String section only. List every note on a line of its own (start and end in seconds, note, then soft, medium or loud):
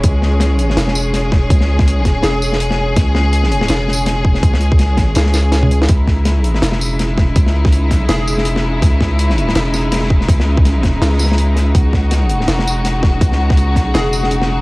0.00 5.86 C#3 medium
0.00 5.86 G#3 medium
0.00 5.86 C#4 medium
0.00 5.87 G#4 medium
5.89 14.61 C#3 medium
5.89 14.61 G#3 medium
5.89 14.61 D#4 medium
5.89 11.73 E4 medium
11.75 14.61 F#4 medium